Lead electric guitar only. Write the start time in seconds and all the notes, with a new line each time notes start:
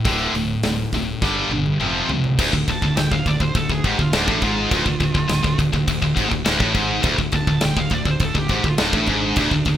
2.70 A5
2.97 G5
3.12 F5
3.27 D5
3.41 C5
3.57 A4
3.71 G#4
3.87 G4
4.01 F4
4.17 D4
4.44 F4
7.35 A5
7.64 G5
7.80 F5
7.94 D5
8.11 C5
8.25 A4
8.39 G4
8.55 G4
8.69 F4
8.82 D4
9.11 D4